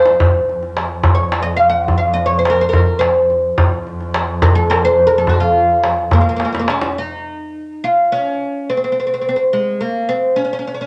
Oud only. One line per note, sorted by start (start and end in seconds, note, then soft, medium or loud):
0.00 0.87 C5 medium
1.15 1.42 C#5 medium
1.42 1.56 D#5 medium
1.56 1.69 F5 medium
1.69 1.97 F#5 medium
1.98 2.13 F5 medium
2.14 2.25 D#5 medium
2.26 2.38 C#5 medium
2.39 2.53 C5 medium
2.50 2.64 A#4 medium
2.61 2.72 C5 medium
2.69 3.01 A#4 medium
2.99 4.07 C5 medium
4.42 4.55 A#4 loud
4.55 4.69 A4 medium
4.70 4.84 A#4 loud
4.85 5.05 C5 loud
5.07 5.18 A#4 medium
5.18 5.30 A4 medium
5.29 5.40 F#4 medium
5.40 6.66 F4 medium
6.13 6.20 A#3 medium
6.21 6.28 A#3 medium
6.29 6.35 A#3 medium
6.36 6.43 A#3 medium
6.45 6.51 A#3 medium
6.52 6.58 A#3 medium
6.59 6.66 A#3 medium
6.70 6.98 C#4 medium
6.98 7.84 D#4 medium
7.84 8.11 F4 medium
8.12 8.69 C#4 medium
8.69 8.75 C4 medium
8.77 8.83 C4 medium
8.84 8.90 C4 medium
8.92 8.98 C4 soft
9.00 9.05 C4 medium
9.07 9.13 C4 soft
9.14 9.20 C4 medium
9.21 9.27 C4 medium
9.29 9.35 C4 medium
9.36 9.42 C4 medium
9.53 9.81 G#3 medium
9.81 10.08 A#3 medium
10.09 10.37 C4 medium
10.36 10.43 C#4 medium
10.45 10.51 C#4 medium
10.53 10.58 C#4 medium
10.59 10.66 C#4 medium
10.67 10.73 C#4 medium
10.74 10.80 C#4 medium
10.81 10.86 C#4 medium